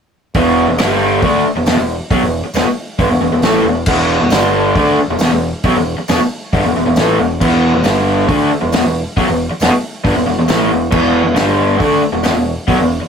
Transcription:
0.34 E1 E2 B2 E3, kick, open hi-hat
0.68 E1 E2 B2
0.78 G1 G2 D3 G3, snare, open hi-hat, tambourine
1.22 D2 D3 A3 D4, kick, open hi-hat
1.45 muted picked electric bass stroke, muted overdriven electric guitar stroke
1.55 E1 E2 B2
1.66 E1 E2 B2, snare, open hi-hat, tambourine
1.77 E1 E2 B2
2.10 B1 B2 F#3, kick, open hi-hat
2.21 E1 E2 B2
2.43 muted picked electric bass stroke, muted overdriven electric guitar stroke
2.54 E1 E2 B2, snare, open hi-hat, tambourine
2.66 muted picked electric bass stroke, muted overdriven electric guitar stroke
2.99 G1 G2 D3, kick, open hi-hat
3.09 E1 E2 B2
3.19 E1 E2 B2
3.30 E1 E2 B2
3.41 A1 A2 E3, snare, open hi-hat, tambourine
3.45 A3
3.63 E1 E2 B2
3.86 E1 E2 B2 E3, kick, crash
4.20 E1 E2 B2
4.30 G1 G2 D3 G3, snare, open hi-hat, tambourine
4.75 D2 D3 A3 D4, kick, open hi-hat
4.96 muted picked electric bass stroke, muted overdriven electric guitar stroke
5.08 E1 E2 B2
5.18 E1 E2, snare, open hi-hat, tambourine
5.23 B2
5.30 E1 E2 B2
5.63 B1 B2 F#3, kick, open hi-hat
5.74 E1 E2 B2
5.97 muted picked electric bass stroke, muted overdriven electric guitar stroke
6.08 E1 E2 B2, snare, open hi-hat, tambourine
6.20 muted picked electric bass stroke, muted overdriven electric guitar stroke
6.53 G1 G2 D3, kick, open hi-hat
6.64 E1 E2 B2
6.74 E1 E2 B2
6.86 E1 E2 B2
6.96 A1 A2 E3 A3, snare, open hi-hat, tambourine
7.18 E1 E2 B2
7.40 E1 E2 B2 E3, kick, crash
7.74 E1 E2 B2
7.84 G1 G2 D3 G3, snare, open hi-hat, tambourine
8.27 D2 D3 A3 D4, kick, open hi-hat
8.50 muted overdriven electric guitar stroke, muted picked electric bass stroke
8.61 E1 E2 B2
8.72 E1 E2 B2, snare, open hi-hat, tambourine
8.84 E1 E2 B2
9.17 B1 B2 F#3, kick, open hi-hat
9.27 E1 E2 B2
9.50 muted picked electric bass stroke, muted overdriven electric guitar stroke
9.60 E1 E2 B2, snare, open hi-hat, tambourine
9.71 muted picked electric bass stroke, muted overdriven electric guitar stroke
10.04 G1 G2 D3, kick, open hi-hat
10.15 E1 E2 B2
10.26 E1 E2 B2
10.37 E1 E2 B2
10.48 A1 A2 E3 A3, snare, open hi-hat, tambourine
10.70 E1 E2 B2
10.91 E1 E2 B2 E3, kick, crash
11.24 E1 E2 B2
11.34 G1 G2 D3 G3, snare, open hi-hat, tambourine
11.78 D2 D3 A3 D4, kick, open hi-hat
12.01 muted picked electric bass stroke, muted overdriven electric guitar stroke
12.12 E1 E2 B2
12.23 E1 E2 B2, snare, open hi-hat, tambourine
12.34 E1 E2 B2
12.67 B1 B2 F#3, kick, open hi-hat
12.79 E1 E2 B2
13.01 muted overdriven electric guitar stroke, muted picked electric bass stroke

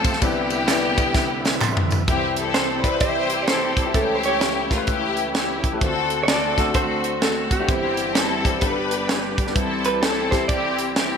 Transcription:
Already playing: G1 G2 F3 A3 C4 F4 G4 A4
0.05 kick, ride bell, tambourine
0.13 snare
0.21 C2 C3 D3 B3 C4 E4 G4 B4 D5, kick, ride bell, tambourine
0.50 ride bell, tambourine
0.68 B3 E4 B4 D5, snare, clap, ride bell, tambourine
0.98 kick, ride bell, tambourine
1.14 kick, snare, tambourine
1.45 snare, tambourine
1.61 C6, clap, mid tom, tambourine
1.77 floor tom
1.90 floor tom, tambourine
2.07 C2 C3 E3 G3 C4 E4 G4 E5, kick, closed hi-hat
2.36 C4 E4 A4, closed hi-hat
2.54 C5, snare, closed hi-hat
2.83 C4 E4 G4 B4 D5, kick, closed hi-hat
3.00 E4 G4 C5 E5, kick, closed hi-hat
3.30 closed hi-hat
3.42 D5
3.48 C4 E4 A4 C5, snare, closed hi-hat
3.77 kick, closed hi-hat
3.85 C4 E4 G4 G5
3.94 C#2 C#3 E3 A3 B3 E4 G4 A4 B4, kick, closed hi-hat
4.00 C#4 C#5
4.15 C5
4.23 C#5, closed hi-hat
4.41 snare, closed hi-hat
4.70 A3 E4 F4 G4 A#4, kick, snare, closed hi-hat
4.77 B4
4.87 E4 G4, kick, closed hi-hat
5.17 closed hi-hat
5.35 E4 G4, snare, closed hi-hat
5.64 kick, closed hi-hat
5.72 A3 E4 G4 B4
5.81 D2 D3 A3 C4 D4 F4 F#4 A4 C5, kick, closed hi-hat
5.87 F#4
6.10 closed hi-hat
6.23 C#5
6.28 C4 F#4 A4 D5, snare, closed hi-hat
6.57 A3 D4 F#4 A4, kick, snare, closed hi-hat
6.74 A3 C4 F#4 C5, kick, closed hi-hat
7.04 closed hi-hat
7.22 A3 C4 F#4 A4, snare, closed hi-hat
7.51 G4, kick, closed hi-hat
7.59 A3 D4 F#4 C5
7.68 G1 G2 E3 G3 C4 E4 G4 C5, kick, closed hi-hat
7.97 closed hi-hat
8.15 C4 E4 A4, snare, closed hi-hat
8.44 G3 C4 E4 G4, kick, closed hi-hat
8.61 G1 G2 D3 G3 B3 D4 G4 A4 B4, kick, closed hi-hat
8.67 B4
8.91 closed hi-hat
9.09 snare, closed hi-hat
9.38 kick, closed hi-hat
9.46 G3 B3 D4 B4, snare
9.55 C2 C3 E3 G3 C4 E4 G4 A4 C5, kick, closed hi-hat
9.85 B4, closed hi-hat
10.02 C4 E4 A4, snare, closed hi-hat
10.30 G3 C4 E4 G4 C5, kick, snare, closed hi-hat
10.48 C4 E4 G4 D5, kick, closed hi-hat
10.79 closed hi-hat
10.96 C4 E4 G4, snare, closed hi-hat

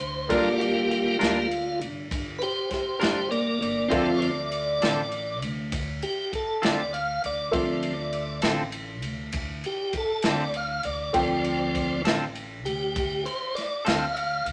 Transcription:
Already playing: C5
0.00 D2, ride
0.29 G1 G3 A#3 D4 F4 A4 A#4 D5, kick, ride
0.33 D5
0.58 F#4, ride
0.62 G4
0.91 G4, ride
1.19 D2 G3 A#3 D4 F4 A#4, snare, ride
1.51 ride
1.80 G1, ride
2.11 G1, kick, ride
2.39 B4, ride
2.43 G4 C5
2.71 G4 C5, kick, snare, ride
3.00 G1 G3 D4 F4 G4 A#4 C5, snare, ride
3.31 A#3 D5, ride
3.61 G1 A#3 D5, ride
3.88 D2 D3 F3 C4 F4 A4 C5 D5 E5, kick, ride
4.17 C#5
4.22 D5, ride
4.52 ride
4.80 A1 D3 C4 F4 A4, snare, ride
5.12 ride
5.41 D2, ride
5.72 D2, kick, ride
6.02 G4, ride
6.33 A4, kick, ride
6.62 D2 D3 C4 F4 A4 D5, snare, ride
6.93 F5, ride
7.24 D2 D5, ride
7.51 D2 F3 C4 F4 A4 C5 E5, kick, ride
7.83 ride
8.13 ride
8.42 A1 D3 C4 F4 A4, snare, ride
8.72 ride
9.02 D2, ride
9.32 D2, kick, ride
9.64 G4, ride
9.93 kick, ride
9.97 A4
10.22 D2 D3 C4 F4 A4, snare, ride
10.29 D5
10.54 F5, ride
10.83 D2 D5, ride
11.13 D2 F3 C4 F4 A4 C5 G5, kick, ride
11.44 ride
11.75 kick, ride
12.04 A1 D3 C4 F4 A4, snare, ride
12.35 ride
12.65 D2 G4, ride
12.96 D2, kick, ride
13.26 C5, ride
13.55 D5, snare, ride
13.85 D2 D3 C4 F4 A4 F5, snare, ride
14.13 E5, ride
14.18 F5
14.45 D2, ride

